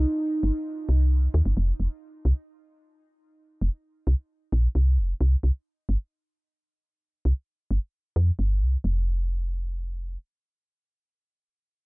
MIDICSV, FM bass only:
0, 0, Header, 1, 2, 480
1, 0, Start_track
1, 0, Tempo, 454545
1, 1658, Time_signature, 4, 2, 24, 8
1, 12515, End_track
2, 0, Start_track
2, 0, Title_t, "FM bass"
2, 0, Program_c, 0, 39
2, 457, Note_on_c, 0, 31, 88
2, 537, Note_off_c, 0, 31, 0
2, 937, Note_on_c, 0, 36, 85
2, 1353, Note_off_c, 0, 36, 0
2, 1417, Note_on_c, 0, 39, 99
2, 1497, Note_off_c, 0, 39, 0
2, 1537, Note_on_c, 0, 31, 91
2, 1617, Note_off_c, 0, 31, 0
2, 1657, Note_on_c, 0, 29, 102
2, 1817, Note_off_c, 0, 29, 0
2, 1897, Note_on_c, 0, 29, 80
2, 1977, Note_off_c, 0, 29, 0
2, 2377, Note_on_c, 0, 36, 90
2, 2457, Note_off_c, 0, 36, 0
2, 3817, Note_on_c, 0, 29, 81
2, 3897, Note_off_c, 0, 29, 0
2, 4298, Note_on_c, 0, 36, 90
2, 4377, Note_off_c, 0, 36, 0
2, 4778, Note_on_c, 0, 34, 98
2, 4937, Note_off_c, 0, 34, 0
2, 5017, Note_on_c, 0, 36, 91
2, 5258, Note_on_c, 0, 29, 81
2, 5274, Note_off_c, 0, 36, 0
2, 5417, Note_off_c, 0, 29, 0
2, 5497, Note_on_c, 0, 36, 96
2, 5657, Note_off_c, 0, 36, 0
2, 5738, Note_on_c, 0, 36, 83
2, 5818, Note_off_c, 0, 36, 0
2, 6218, Note_on_c, 0, 31, 85
2, 6297, Note_off_c, 0, 31, 0
2, 7658, Note_on_c, 0, 36, 79
2, 7738, Note_off_c, 0, 36, 0
2, 8137, Note_on_c, 0, 31, 86
2, 8217, Note_off_c, 0, 31, 0
2, 8617, Note_on_c, 0, 41, 95
2, 8777, Note_off_c, 0, 41, 0
2, 8858, Note_on_c, 0, 31, 88
2, 9098, Note_on_c, 0, 36, 85
2, 9114, Note_off_c, 0, 31, 0
2, 9257, Note_off_c, 0, 36, 0
2, 9337, Note_on_c, 0, 29, 96
2, 10735, Note_off_c, 0, 29, 0
2, 12515, End_track
0, 0, End_of_file